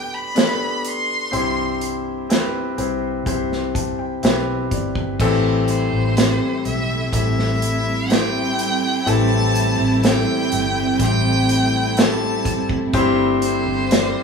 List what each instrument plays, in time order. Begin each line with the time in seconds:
Already playing: fingered electric bass D2, grand piano B3 D4 G4 A4 B4, violin G5
0.14 violin B5
0.35 grand piano B3 D4 G4 A4, snare, closed hi-hat
0.84 violin C6, closed hi-hat
1.31 fingered electric bass C2, grand piano G2 C4 E4 G4 C5, closed hi-hat
1.81 closed hi-hat
2.29 grand piano C4 E4 G4 B4, snare, closed hi-hat
2.77 fingered electric bass C2, grand piano C4 E4 G4 C5, closed hi-hat
3.26 fingered electric bass C2, grand piano C4 E4 G4 C5, kick, closed hi-hat
3.52 snare
3.74 grand piano A5, kick, closed hi-hat
3.99 grand piano G5
4.23 fingered electric bass B1, grand piano C4 E4 G4 B4 E5, snare, closed hi-hat
4.71 fingered electric bass G1, grand piano D5, kick, closed hi-hat
4.95 kick
5.20 fingered electric bass A1, grand piano A2 E3 C4 E4 G4 A4, string section G3 A3 C4 E4, kick, crash
5.68 violin C5, closed hi-hat
5.93 fingered electric bass A1
6.17 grand piano C4 E4 G4 C5, snare, closed hi-hat
6.65 fingered electric bass B1, violin E5, closed hi-hat
7.13 fingered electric bass A1, grand piano C4 E4 G4 A4, violin E5, kick, closed hi-hat
7.39 snare
7.62 closed hi-hat
8.10 grand piano C4 E4 G4 C5, violin G5, snare, closed hi-hat
8.59 closed hi-hat
9.06 fingered electric bass A1, grand piano A2 E3 C4 E4 G4 A4, string section A3, violin A5, closed hi-hat
9.55 closed hi-hat
9.79 fingered electric bass A1
10.03 grand piano C4 E4 G4 A4, violin G5, snare, closed hi-hat
10.52 fingered electric bass G1, closed hi-hat
11.00 fingered electric bass A1, grand piano C4 E4 G4 C5, violin G5, kick, closed hi-hat
11.49 closed hi-hat
11.97 grand piano C4 E4 G4 A4, violin A5, snare, closed hi-hat
12.45 kick, closed hi-hat
12.69 kick
12.93 fingered electric bass G1, grand piano G2 G3 C4 E4 G4 C5, kick, closed hi-hat
13.42 violin C5, closed hi-hat
13.66 fingered electric bass G1
13.90 grand piano C4 E4 G4 D5, snare, closed hi-hat